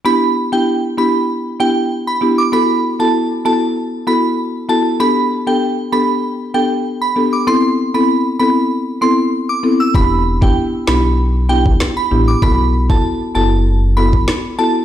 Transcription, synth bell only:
\new Staff \with { instrumentName = "Synth bell" } { \time 4/4 \key e \minor \tempo 4 = 97 b''8 r16 g''16 r8 b''16 r8. g''16 r8 b''16 r16 d'''16 | b''8 r16 a''16 r8 a''16 r8. b''16 r8. a''16 r16 | b''8 r16 g''16 r8 b''16 r8. g''16 r8 b''16 r16 d'''16 | c'''8 r16 b''16 r8 b''16 r8. c'''16 r8 d'''16 r16 e'''16 |
b''8 r16 g''16 r8 b''16 r8. g''16 r8 b''16 r16 d'''16 | b''8 r16 a''16 r8 a''16 r8. b''16 r8. a''16 r16 | }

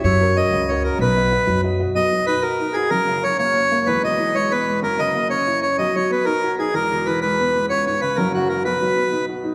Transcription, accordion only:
\new Staff \with { instrumentName = "Accordion" } { \time 6/8 \key b \major \tempo 4. = 125 cis''4 dis''4 cis''8 ais'8 | b'2 r4 | dis''4 b'8 ais'4 gis'8 | ais'4 cis''8 cis''4. |
b'8 dis''4 cis''8 b'4 | ais'8 dis''4 cis''4 cis''8 | dis''8 cis''8 b'8 ais'4 gis'8 | ais'4 b'8 b'4. |
cis''8 cis''8 b'8 ais'8 fis'8 ais'8 | b'2 r4 | }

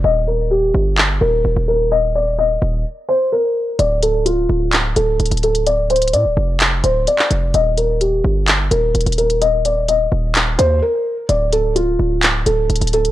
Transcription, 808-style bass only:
\new Staff \with { instrumentName = "808-style bass" } { \clef bass \time 4/4 \key ees \lydian \tempo 4 = 128 ees,,4. g,,4 ees,,8 ees,,16 ees,,8.~ | ees,,4. ees,,8 r2 | d,,4. d,,4 d,,8 d,,16 d,,8.~ | d,,4 a,16 d,,16 f,,4 d,,8 r8 f,,8 |
ees,,4. g,,4 ees,,8 ees,,16 ees,,8.~ | ees,,4. ees,,4 ees,8 r4 | d,,4. d,,4 d,,8 d,,16 d,,8. | }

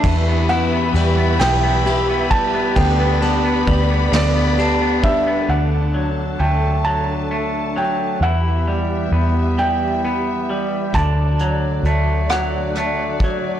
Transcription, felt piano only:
\new Staff \with { instrumentName = "Felt piano" } { \time 6/8 \key d \mixolydian \tempo 4. = 44 r8 fis''4 g''4 a''8 | g''4. d''4 e''8 | fis''4 g''8 a''4 g''8 | fis''4. g''4. |
a''4. fis''4. | }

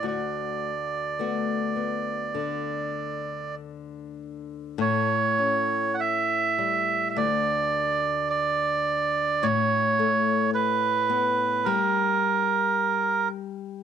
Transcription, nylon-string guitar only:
\new Staff \with { instrumentName = "Nylon-string guitar" } { \time 4/4 \key a \mixolydian \tempo 4 = 53 <d, fis'>4 <a b fis'>8 b8 d2 | a,8 cis'4 g8 d,2 | a,8 a4 b8 g2 | }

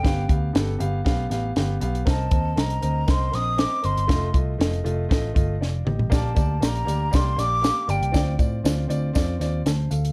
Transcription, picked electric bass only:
\new Staff \with { instrumentName = "Picked electric bass" } { \clef bass \time 4/4 \key bes \major \tempo 4 = 118 g,,8 d,8 g,,8 g,,8 b,,8 a,,8 g,,8 b,,8 | c,8 ees,8 c,8 d,8 c,8 bes,,8. r16 g,,16 g,,16 | f,,8 c,8 f,,8 f,,8 a,,8 g,,8 f,,8 a,,8 | bes,,8 d,8 bes,,8 d,8 c,8 bes,,8. r16 g,,16 c,16 |
d,8 a,8 d,8 d,8 f,8 ees,8 d,8 d,8 | }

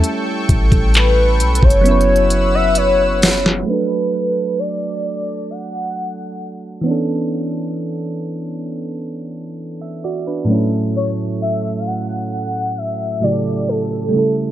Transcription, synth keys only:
\new Staff \with { instrumentName = "Synth keys" } { \time 4/4 \key fis \phrygian \tempo 4 = 66 << { r1 | r1 | r2 r8. e''16 <fis' d''>16 <d' b'>8 r16 | r1 | } \\ { <g a cis' e' a'>2 <fis b cis' e' b'>2 | <fis a d' a'>2.~ <fis a d' a'>8 <e b cis' d' a'>8~ | <e b cis' d' a'>2.~ <e b cis' d' a'>8 <a, fis a cis' e' a'>8~ | <a, fis a cis' e' a'>2~ <a, fis a cis' e' a'>8 <a, cis fis a e' g' a'>4 <cis g a e' a'>8 | } >> }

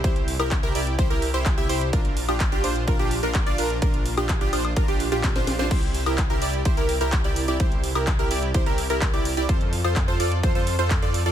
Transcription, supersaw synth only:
\new Staff \with { instrumentName = "Supersaw synth" } { \time 4/4 \key c \mixolydian \tempo 4 = 127 <e' g' c''>8. <e' g' bes'>16 r16 <e' g' bes'>16 <e' g' d''>8 <e' g' c''>16 <e' g' bes'>8 <e' g' c''>8 <e' g' e''>16 <e' g' c''>8 | <d' f' bes'>8. <d' f' g'>16 r16 <d' f' g'>16 <d' f' c''>8 <d' f' bes'>16 <d' f' g'>8 <d' f' bes'>8 <d' f' d''>16 <d' f' bes'>8 | <d' f' bes'>8. <d' f' g'>16 r16 <d' f' g'>16 <d' f' c''>8 <d' f' bes'>16 <d' f' g'>8 <d' f' g'>8 <d' f' c''>8 <d' f' c''>16 | <e' g' c''>8. <e' g' bes'>16 r16 <e' g' bes'>16 <e' g' d''>8 <e' g' c''>16 <e' g' bes'>8 <e' g' bes'>8 <e' g' d''>8 <e' g' d''>16 |
<e' c''>8. <e' g' bes'>16 r16 <e' g' bes'>16 <e' g' d''>8 <e' g' c''>16 <e' g' bes'>8 <e' g' bes'>8 <e' g' d''>8 <e' g' d''>16 | <f' a' c''>8. <f' a' c''>16 r16 <f' a' c''>16 <f' a' d''>8 <f' a' c''>16 <f' a' c''>8 <f' a' c''>8 <f' a' d''>8 <f' a' d''>16 | }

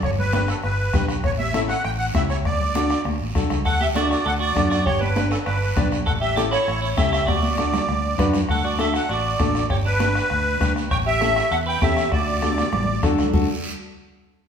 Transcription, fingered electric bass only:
\new Staff \with { instrumentName = "Fingered electric bass" } { \clef bass \time 4/4 \key d \major \tempo 4 = 198 g,,2 g,,4 b,,4 | a,,2 a,,4 cis,4 | d,2 d,8 a,,8 b,,8 cis,8 | d,2 d,4 fis,4 |
g,,2 g,,4 b,,4 | a,,2 a,,4 cis,4 | d,2 d,4 fis,4 | d,2 a,,4 a,,4 |
g,,2 d,4 d,4 | a,,2 e,4 e,4 | d,2 a,,4 e,8 d,8 | d,8 r2. r8 | }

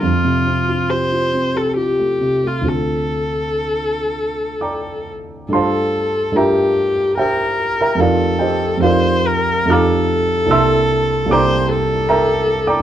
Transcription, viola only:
\new Staff \with { instrumentName = "Viola" } { \time 3/4 \key g \dorian \tempo 4 = 71 f'4 c''8. a'16 g'8. f'16 | a'2~ a'8 r8 | a'4 g'4 bes'4 | a'4 c''8 bes'8 a'4~ |
a'4 c''8 a'4. | }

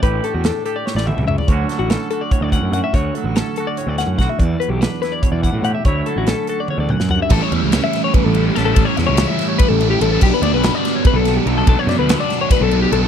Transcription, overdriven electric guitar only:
\new Staff \with { instrumentName = "Overdriven electric guitar" } { \time 7/8 \key a \mixolydian \tempo 4 = 144 r2. r8 | r2. r8 | r2. r8 | r2. r8 |
r2. r8 | <a, e g cis' e'>8 <g cis' e'>8 <a, e g cis' e'>4. <g cis' e'>8 <e g cis' e'>8 | <a, e g cis' e'>8 <g cis' e'>8 <a, e g cis' e'>4. <g cis' e'>8 <e g cis' e'>8 | <b, g b d'>8 <g b d'>8 <b, g b d'>4. <g b d'>8 <b, g b d'>8 |
<b, fis b d'>8 <fis b d'>8 <b, fis b d'>4. <fis b d'>8 <b, fis b d'>8 | }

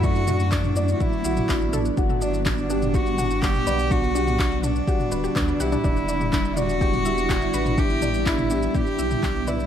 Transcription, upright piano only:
\new Staff \with { instrumentName = "Upright piano" } { \time 4/4 \key e \minor \tempo 4 = 124 d'8 d'8 d'8 d''8 d'8 fis'8 d'8 d'8 | fis'8 d''8 d'8 g'8 d'8 d'8 d'8 d''8 | d'8 g'8 d'8 d'8 fis'8 d''8 d'8 g'8 | d'8 d'8 d'8 d''8 d'8 g'8 d'8 d'8 |
e'8 d''8 d'8 g'8 d'8 d'8 d'8 d''8 | }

